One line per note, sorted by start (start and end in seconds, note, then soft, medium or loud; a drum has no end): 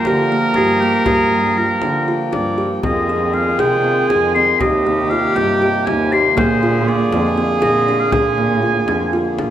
0.00 2.80 F3 medium
0.00 2.80 A#3 medium
0.00 2.58 A#4 loud
0.00 2.80 G5 medium
0.05 0.30 D3 medium
0.05 0.22 G4 medium
0.05 0.57 A#4 medium
0.05 frame drum soft
0.32 0.47 A#3 medium
0.54 1.04 G2 medium
0.54 0.73 G4 medium
0.54 0.82 G#4 medium
0.54 frame drum soft
0.80 0.98 A#3 medium
0.80 1.05 G4 medium
1.06 1.79 G2 medium
1.06 1.22 G4 medium
1.06 1.58 G#4 medium
1.06 frame drum medium
1.32 1.48 A#3 medium
1.57 1.73 F4 medium
1.57 2.08 A#4 medium
1.82 2.07 D3 medium
1.82 1.99 D4 medium
1.82 frame drum soft
2.08 2.24 F4 medium
2.33 2.82 G2 medium
2.33 2.49 D4 medium
2.33 2.69 D5 medium
2.33 frame drum soft
2.58 2.74 G4 medium
2.58 frame drum soft
2.83 3.57 F2 medium
2.83 4.60 D#3 medium
2.83 4.60 G#3 medium
2.83 3.00 C4 medium
2.83 4.60 F4 medium
2.83 4.62 G#4 medium
2.83 3.35 D#5 medium
2.83 frame drum medium
3.09 3.25 G#4 medium
3.09 frame drum soft
3.33 3.50 C4 medium
3.33 3.61 F5 medium
3.59 3.85 C3 medium
3.59 3.76 G#4 medium
3.59 4.10 G5 medium
3.59 frame drum soft
3.84 4.00 C4 medium
4.08 4.26 G#4 medium
4.08 4.34 G#5 medium
4.08 frame drum soft
4.12 4.59 F2 medium
4.34 4.52 C4 medium
4.34 4.61 C6 medium
4.60 5.34 D#2 medium
4.60 6.36 C3 medium
4.60 9.50 A#3 medium
4.60 6.36 D#4 medium
4.60 4.77 G4 medium
4.60 6.39 G4 loud
4.60 5.11 D#5 medium
4.60 frame drum medium
4.86 5.02 A#3 medium
4.86 frame drum soft
5.10 5.27 F4 medium
5.10 5.37 F5 medium
5.36 5.61 G2 medium
5.36 5.53 D#4 medium
5.36 5.87 G5 medium
5.36 frame drum soft
5.62 5.78 G4 medium
5.86 6.35 D#2 medium
5.86 6.03 D#4 medium
5.86 6.14 G#5 loud
5.86 frame drum soft
6.12 6.28 G4 medium
6.12 6.37 C6 medium
6.37 7.09 A#2 loud
6.37 9.50 D3 medium
6.37 6.53 A#3 medium
6.37 9.50 G#4 medium
6.37 6.89 C5 medium
6.37 frame drum medium
6.63 6.78 F4 medium
6.63 frame drum soft
6.88 7.04 A#3 medium
6.88 7.36 D5 medium
7.12 7.37 F2 medium
7.12 7.29 G#4 medium
7.12 frame drum medium
7.38 7.53 C4 medium
7.62 8.10 A#2 medium
7.62 7.77 G#4 medium
7.62 8.01 D#5 medium
7.62 frame drum medium
7.88 8.04 D4 medium
8.00 8.14 F5 medium
8.12 8.85 A#2 medium
8.12 8.28 G#4 medium
8.12 9.40 G#5 medium
8.12 frame drum medium
8.38 8.54 A#3 medium
8.38 frame drum soft
8.62 8.78 F4 medium
8.88 9.13 F2 medium
8.88 9.04 D4 medium
8.88 frame drum soft
9.13 9.29 F4 medium
9.39 9.50 A#2 medium
9.39 9.50 D4 medium
9.39 frame drum soft